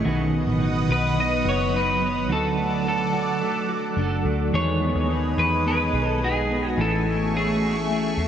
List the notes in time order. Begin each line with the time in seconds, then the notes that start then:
Already playing: A3 C#4
0.03 B1 B2 D#3 F#3 B3 F#4 B4 D#5 F#5 D#6
0.07 D#4 B4
0.33 B3
0.47 A1
0.61 D#4
0.89 B1 F#4 B4
1.16 F#3 B3 D#4 B4 D#5
1.45 F#1 F#4 C#5
1.72 F#3 B3 D#4 B4
1.76 B4
2.01 B3
2.28 D2 D3 F#3 D4 F#4 A4 D5 F#5 D6
2.32 A4
2.57 A3
2.85 D4 A4
3.13 F#4
3.40 F#3 A3 D4 F#4 A4
3.69 A1 F#4
3.96 F#1 F#3 D4 F#4 A4
4.25 D2 A3
4.52 E2 D#3 E3 G#3 B3 D#4 G#4 B4 C#5 D#5 G#5 D#6
4.82 B3
4.95 D#2
5.08 G#3 B3 D#4 G#4
5.38 E2 G#4 B4
5.64 G#3 B3 D#4 G#4 B4
5.93 B1 G#4
6.08 A4
6.20 G#3 B3 D#4 G#4
6.24 G#4
6.50 B3
6.68 F#4
6.77 A1 E3 A3 C#4 E4 E5 C#6
6.81 A4
7.06 A3
7.33 A3 C#4 E4 G#4
7.62 F#4
7.76 G#4
7.89 A3 C#4 E4 G#4
8.18 E2 G#4